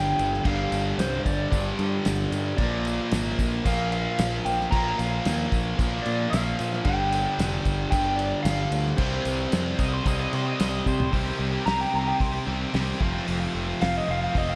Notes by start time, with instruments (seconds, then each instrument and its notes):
Already playing: fingered electric bass G1, overdriven electric guitar G2 D3 G3 A#3, distorted electric guitar G2 D3 G3, electric slide guitar G5
0.19 fingered electric bass G1, tambourine, crash
0.34 snare
0.44 fingered electric bass G1, overdriven electric guitar G2 D3 G3, distorted electric guitar G2 D3 G3, electric slide guitar F5, kick, crash
0.72 fingered electric bass G1, tambourine, crash
0.98 fingered electric bass C2, electric slide guitar C5, snare, tambourine, crash
1.26 fingered electric bass G1, electric slide guitar D5, kick, tambourine, crash
1.51 fingered electric bass G1, overdriven electric guitar G2 D3 G3, kick, tambourine, crash
1.79 fingered electric bass G2, tambourine, crash
2.05 fingered electric bass G1, snare, tambourine, crash
2.32 fingered electric bass G2, tambourine, crash
2.57 fingered electric bass A#1, overdriven electric guitar A#2 F3 A#3, distorted electric guitar A#2 F3 A#3, electric slide guitar D5, kick, tambourine, crash
2.85 tambourine, crash
3.11 fingered electric bass G#1, snare, tambourine, crash
3.39 fingered electric bass A#1, kick, tambourine, crash
3.65 fingered electric bass A#1, overdriven electric guitar A#2 F3 A#3, electric slide guitar F5, kick, tambourine, crash
3.92 electric slide guitar F5, tambourine, crash
4.18 fingered electric bass A#1, snare, tambourine, crash
4.45 fingered electric bass A#1, electric slide guitar G5, tambourine, crash
4.61 snare
4.71 fingered electric bass A#1, overdriven electric guitar A#2 F3 A#3, distorted electric guitar A#2 F3 A#3, electric slide guitar A#5, kick, tambourine, crash
4.98 fingered electric bass A#1, electric slide guitar F5, tambourine, crash
5.25 fingered electric bass D#2, snare, tambourine, crash
5.52 fingered electric bass A#1, kick, tambourine, crash
5.78 fingered electric bass A#1, overdriven electric guitar A#2 F3 A#3, kick, tambourine, crash
6.02 fingered electric bass A#2, electric slide guitar D5, crash
6.06 tambourine
6.30 fingered electric bass A#1, electric slide guitar F5, tambourine, crash
6.34 snare
6.59 fingered electric bass A#2, tambourine, crash
6.73 snare
6.84 fingered electric bass G1, overdriven electric guitar G2 D3 G3, distorted electric guitar G2 D3 G3, electric slide guitar G5, kick, tambourine, crash
7.12 tambourine, crash
7.39 fingered electric bass F1, snare, tambourine, crash
7.65 fingered electric bass G1, kick, tambourine, crash
7.91 fingered electric bass G1, overdriven electric guitar G2 D3 G3, electric slide guitar G5, kick, tambourine, crash
8.16 electric slide guitar D5, tambourine, crash
8.43 fingered electric bass G1, electric slide guitar F5, snare, tambourine, crash
8.71 fingered electric bass D2, tambourine, crash
8.86 snare
8.97 fingered electric bass C2, overdriven electric guitar C3 G3 C4, distorted electric guitar C3 G3 C4, electric slide guitar C5, kick, tambourine, crash
9.25 fingered electric bass C2, tambourine, crash
9.52 fingered electric bass F2, snare, tambourine, crash
9.79 fingered electric bass C2, lead electric guitar D#5, kick, tambourine, crash
9.94 lead electric guitar C5
10.05 fingered electric bass C2, overdriven electric guitar C3 G3 C4, lead electric guitar D#5, kick, tambourine, crash
10.20 lead electric guitar D#5
10.33 fingered electric bass C3, lead electric guitar C5, tambourine, crash
10.48 lead electric guitar D#5
10.60 fingered electric bass C2, lead electric guitar D#5, snare, tambourine, crash
10.86 fingered electric bass C3, lead electric guitar C5, kick, tambourine
11.00 floor tom
11.12 fingered electric bass C2, distorted electric guitar C3 D#3 G3 C4 G4, overdriven electric guitar C3 G3 C4, kick, open hi-hat
11.25 distorted electric guitar G3 C4 G4
11.38 fingered electric bass C2, distorted electric guitar D#3 G3 C4 G4
11.52 distorted electric guitar G3 C4 G4
11.65 fingered electric bass C2, distorted electric guitar C3 D#3 G3 C4 G4, electric slide guitar A#5, snare, open hi-hat
11.81 electric slide guitar G5
11.92 fingered electric bass C2, distorted electric guitar D#3 G3 C4 G4, electric slide guitar A#5
12.05 distorted electric guitar G3 C4 G4, electric slide guitar G5
12.20 fingered electric bass C2, electric slide guitar C6, kick, open hi-hat
12.32 distorted electric guitar G3 C4 G4
12.45 fingered electric bass C2, overdriven electric guitar C3 G3 C4, distorted electric guitar D#3 G3 C4 G4
12.72 fingered electric bass C2, distorted electric guitar C3 D#3 G3 C4 G4, overdriven electric guitar C3 G3 C4, snare, open hi-hat
13.00 fingered electric bass F1, overdriven electric guitar F2 C3 F3, distorted electric guitar F3 A3 C4 F4, kick
13.12 distorted electric guitar A3 C4 F4
13.26 fingered electric bass F1, distorted electric guitar F3 A3 C4 F4, open hi-hat
13.39 distorted electric guitar A3 C4 F4
13.53 fingered electric bass F1, distorted electric guitar F3 A3 C4 F4
13.66 distorted electric guitar A3 C4 F4
13.80 fingered electric bass F1, distorted electric guitar F3 A3 C4 F4, electric slide guitar F5, snare, open hi-hat
13.97 electric slide guitar D#5
14.06 fingered electric bass F1, distorted electric guitar F3 A3 C4 F4
14.11 electric slide guitar F5
14.21 distorted electric guitar A3 C4 F4, electric slide guitar F5
14.34 fingered electric bass F1, overdriven electric guitar F2 C3 F3, kick, open hi-hat
14.38 electric slide guitar D#5
14.48 distorted electric guitar A3 C4 F4, electric slide guitar F5